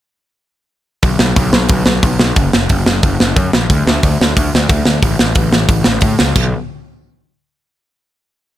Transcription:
1.03 picked electric bass B1, kick, open hi-hat
1.19 picked electric bass B1, snare
1.36 picked electric bass B1, kick, open hi-hat
1.52 picked electric bass B1, snare
1.69 picked electric bass B1, kick, open hi-hat
1.85 picked electric bass B1, snare
2.03 picked electric bass B1, kick, open hi-hat
2.19 picked electric bass B1, snare
2.36 picked electric bass F#1, kick, open hi-hat
2.53 picked electric bass F#1, snare
2.69 picked electric bass F#1, kick, open hi-hat
2.86 picked electric bass F#1, snare
3.03 picked electric bass F#1, kick, open hi-hat
3.20 picked electric bass F#1, snare
3.36 picked electric bass F#2, kick, open hi-hat
3.53 picked electric bass A#1, snare
3.70 picked electric bass D2, kick, open hi-hat
3.87 picked electric bass D2, snare
4.03 picked electric bass D2, kick, open hi-hat
4.21 picked electric bass D2, snare
4.37 picked electric bass D2, kick, open hi-hat
4.54 picked electric bass D2, snare
4.69 picked electric bass D2, kick, open hi-hat
4.85 picked electric bass D2, snare
5.02 picked electric bass A1, kick, open hi-hat
5.19 picked electric bass A1, snare
5.35 picked electric bass A1, kick, open hi-hat
5.52 picked electric bass A1, snare
5.69 picked electric bass A1, kick, open hi-hat
5.84 picked electric bass A1, snare
6.01 picked electric bass A2, kick, open hi-hat
6.19 picked electric bass C#2, snare
6.35 picked electric bass B1, kick, crash

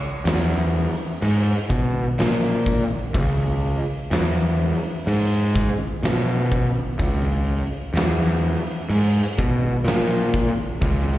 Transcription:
0.25 picked electric bass E2, snare, open hi-hat
1.22 picked electric bass G#2, open hi-hat
1.69 picked electric bass B2, kick
2.18 picked electric bass A#2, snare, open hi-hat
2.66 kick
3.14 picked electric bass C#2, kick, open hi-hat
4.11 picked electric bass E2, snare, open hi-hat
5.07 picked electric bass G#2, open hi-hat
5.56 kick
6.03 picked electric bass B2, snare, open hi-hat
6.52 kick
6.99 picked electric bass C#2, kick, open hi-hat
7.94 picked electric bass E2, snare, open hi-hat
8.89 picked electric bass G#2, open hi-hat
9.38 picked electric bass B2, kick
9.85 picked electric bass A#2, snare, open hi-hat
10.34 kick
10.81 picked electric bass C#2, kick, open hi-hat

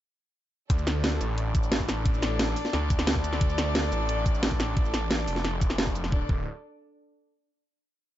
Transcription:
0.70 detuned saw bass D2, string section D4 A4 D5, kick, closed hi-hat
0.78 shaker
0.87 snare, closed hi-hat, shaker
1.04 snare, closed hi-hat
1.21 detuned saw bass A1, closed hi-hat, shaker
1.38 closed hi-hat
1.55 kick, closed hi-hat, shaker
1.63 shaker
1.72 snare, closed hi-hat
1.80 kick
1.89 snare, closed hi-hat, shaker
2.06 kick, closed hi-hat
2.14 shaker
2.22 snare, closed hi-hat, shaker
2.39 snare, closed hi-hat
2.56 open hi-hat, shaker
2.65 snare
2.73 detuned saw bass D2, snare, closed hi-hat
2.90 kick, closed hi-hat, shaker
2.99 snare, shaker
3.07 snare, closed hi-hat
3.16 kick
3.24 closed hi-hat, shaker
3.33 snare
3.41 detuned saw bass D2, kick, closed hi-hat
3.50 shaker
3.58 snare, closed hi-hat, shaker
3.75 snare, closed hi-hat
3.92 detuned saw bass A1, closed hi-hat, shaker
4.09 closed hi-hat
4.26 kick, closed hi-hat, shaker
4.34 shaker
4.43 snare, closed hi-hat
4.51 kick
4.60 snare, closed hi-hat, shaker
4.77 kick, closed hi-hat
4.85 shaker
4.94 snare, closed hi-hat, shaker
5.11 snare, closed hi-hat
5.28 detuned saw bass F1, open hi-hat, shaker
5.36 snare
5.45 snare, closed hi-hat
5.61 kick, closed hi-hat, shaker
5.70 snare, shaker
5.78 snare, closed hi-hat
5.87 kick
5.95 closed hi-hat, shaker
6.04 snare
6.12 detuned saw bass D1, string section D4 A4 D5, kick
6.29 detuned saw bass D1, kick

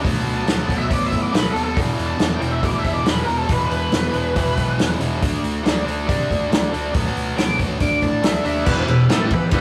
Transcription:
0.02 fingered electric bass D2, distorted electric guitar B2 F#3 B3, kick, open hi-hat
0.26 fingered electric bass D2, open hi-hat
0.34 lead electric guitar A5
0.46 fingered electric bass D2, distorted electric guitar B2 F#3 B3, snare, open hi-hat
0.61 lead electric guitar A5
0.68 fingered electric bass D2, distorted electric guitar B2 F#3 B3, kick, open hi-hat
0.77 lead electric guitar E5
0.89 fingered electric bass D2, distorted electric guitar B2 F#3 B3, lead electric guitar D5, kick, open hi-hat
1.06 lead electric guitar E5
1.12 fingered electric bass A2, kick, open hi-hat
1.22 lead electric guitar D5
1.32 fingered electric bass D2, distorted electric guitar B2 F#3 B3, lead electric guitar B4, snare, open hi-hat
1.51 fingered electric bass D#2, distorted electric guitar B2 F#3 B3, lead electric guitar A4
1.56 open hi-hat
1.64 lead electric guitar A4
1.77 fingered electric bass E1, distorted electric guitar E2 B2 E3, kick, open hi-hat
1.97 fingered electric bass E1, open hi-hat
2.06 lead electric guitar A5
2.18 fingered electric bass E1, distorted electric guitar E2 B2 E3, snare, open hi-hat
2.36 lead electric guitar G5
2.40 fingered electric bass E1, distorted electric guitar E2 B2 E3, open hi-hat
2.51 lead electric guitar E5
2.62 fingered electric bass D2, distorted electric guitar E2 B2 E3, lead electric guitar D5, kick, open hi-hat
2.78 lead electric guitar E5
2.84 fingered electric bass E1, kick, open hi-hat
2.93 lead electric guitar D5
3.05 fingered electric bass E1, distorted electric guitar E2 B2 E3, snare, open hi-hat
3.10 lead electric guitar B4
3.24 fingered electric bass E1, distorted electric guitar E2, lead electric guitar A#4, open hi-hat
3.29 distorted electric guitar B2 E3
3.37 lead electric guitar A4
3.49 fingered electric bass E1, distorted electric guitar E2 B2 E3, lead electric guitar B4, kick, open hi-hat
3.64 lead electric guitar B4
3.70 fingered electric bass E1, open hi-hat
3.92 fingered electric bass E1, distorted electric guitar E2 B2 E3, snare, open hi-hat
4.13 fingered electric bass E1, distorted electric guitar E2 B2 E3, open hi-hat
4.36 fingered electric bass E1, distorted electric guitar E2 B2 E3, kick, open hi-hat
4.57 fingered electric bass B1, kick, open hi-hat
4.78 fingered electric bass E1, distorted electric guitar E2 B2 E3, snare, open hi-hat
5.00 fingered electric bass E1, distorted electric guitar E2 B2 E3, open hi-hat
5.22 fingered electric bass D2, distorted electric guitar D3 A3 D4, kick, open hi-hat
5.43 fingered electric bass D2, open hi-hat
5.64 fingered electric bass D2, distorted electric guitar D3 A3 D4, snare, open hi-hat
5.85 fingered electric bass D2, distorted electric guitar D3 A3 D4, open hi-hat
6.07 fingered electric bass C3, distorted electric guitar D3 A3 D4, kick, open hi-hat
6.31 fingered electric bass D2, kick, open hi-hat
6.50 fingered electric bass D2, distorted electric guitar D3 A3 D4, snare, open hi-hat
6.72 fingered electric bass D2, distorted electric guitar D3 A3 D4, open hi-hat
6.94 fingered electric bass D2, distorted electric guitar B2 F#3 B3, kick, open hi-hat
7.15 fingered electric bass D2, open hi-hat
7.37 fingered electric bass D2, distorted electric guitar B2 F#3 B3, lead electric guitar D6, snare, open hi-hat
7.58 fingered electric bass D2, distorted electric guitar B2 F#3 B3, kick, open hi-hat
7.79 fingered electric bass D2, distorted electric guitar D3 A3 D4, lead electric guitar D6, kick, open hi-hat
8.02 fingered electric bass A2, lead electric guitar A5, kick, open hi-hat
8.22 fingered electric bass D2, distorted electric guitar D3 A3 D4, lead electric guitar E5, snare, open hi-hat
8.44 fingered electric bass D#2, distorted electric guitar D3 A3 D4, lead electric guitar E5, open hi-hat
8.65 fingered electric bass E1, distorted electric guitar E2 B2 E3, tonewheel organ B3 E4 G4 B4, kick, crash
8.87 fingered electric bass E1, distorted electric guitar E2 B2, tonewheel organ B3 E4 G4 B4, ride
9.08 fingered electric bass A1, distorted electric guitar A2 E3 A3, tonewheel organ B3 E4 G4 A4, snare, ride
9.30 tonewheel organ B3 E4 G4 B4, muted distorted electric guitar stroke, muted fingered electric bass stroke, kick, ride
9.51 fingered electric bass G1, distorted electric guitar G2 D3 G3, tonewheel organ B3 E4 G4 B4, kick, ride

